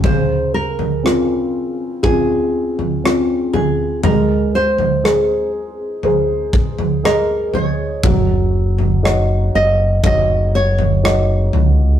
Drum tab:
SD |----r-------r---|----r-------r---|----r-------r---|
FT |o--o----o--o--o-|o--o----o--o--o-|o--o----o--o--o-|
BD |o-------o-------|----------o-----|o-------o-------|